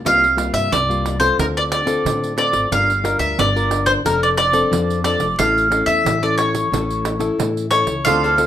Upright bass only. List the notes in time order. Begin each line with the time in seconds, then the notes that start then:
0.05 C2
0.53 G2
0.72 C2
1.39 D2
2.05 D3
2.53 G#1
2.71 G1
3.19 D2
3.38 G1
4.05 F1
4.72 F2
5.19 F1
5.39 A1
5.86 E2
6.05 A1
6.72 A1
7.39 A2
7.86 C#2
8.06 D2